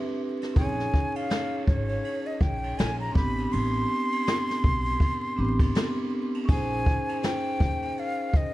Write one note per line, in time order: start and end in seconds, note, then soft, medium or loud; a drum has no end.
0.00 0.52 C4 medium
0.00 0.56 D4 medium
0.00 0.57 G4 medium
0.00 0.61 B4 medium
0.00 0.20 E5 medium
0.41 snare soft
0.41 ride medium
0.53 0.86 A#1 medium
0.53 0.63 C4 medium
0.53 3.11 D#4 medium
0.53 1.18 G#5 medium
0.53 kick loud
0.53 ride medium
0.59 3.13 C#4 medium
0.59 3.13 G#4 medium
0.59 3.14 C#5 medium
0.80 snare soft
0.94 kick medium
1.16 1.66 F5 medium
1.16 ride medium
1.30 snare loud
1.30 hi-hat pedal medium
1.30 ride medium
1.67 1.97 G#1 medium
1.67 2.28 C#5 medium
1.67 kick medium
1.89 ride soft
2.04 ride medium
2.26 2.43 D#5 medium
2.41 2.71 A#1 medium
2.41 2.79 G5 medium
2.41 kick medium
2.63 ride medium
2.78 3.09 A#1 medium
2.78 2.99 G#5 loud
2.78 snare loud
2.78 hi-hat pedal medium
2.78 ride medium
3.00 3.14 A#5 medium
3.12 3.45 A1 medium
3.12 5.32 C4 medium
3.12 5.33 D4 medium
3.12 3.54 B5 loud
3.12 kick loud
3.17 5.36 B3 medium
3.17 5.35 G4 medium
3.17 snare soft
3.38 ride medium
3.52 3.83 A1 loud
3.52 6.12 C6 loud
3.52 ride medium
4.12 ride medium
4.27 snare loud
4.27 hi-hat pedal soft
4.27 ride medium
4.50 snare soft
4.64 4.94 B1 medium
4.64 kick medium
4.86 ride medium
5.00 kick medium
5.00 ride soft
5.36 5.68 A1 medium
5.36 6.50 B3 medium
5.36 6.48 C4 medium
5.36 6.49 D4 medium
5.36 6.49 G4 soft
5.59 kick medium
5.59 ride medium
5.75 snare loud
5.75 hi-hat pedal medium
5.75 ride medium
6.34 ride medium
6.46 6.96 A#1 loud
6.46 8.54 C#4 medium
6.46 8.54 D#4 medium
6.46 7.26 G#5 loud
6.46 kick loud
6.46 crash medium
6.50 8.54 G#4 medium
6.50 8.54 C5 medium
6.86 kick medium
7.09 ride medium
7.23 8.01 G5 loud
7.23 snare loud
7.23 hi-hat pedal medium
7.23 ride medium
7.60 7.90 D#2 medium
7.60 kick medium
7.82 ride soft
7.97 8.38 F5 medium
7.97 ride soft
8.34 8.54 D#5 medium
8.34 kick medium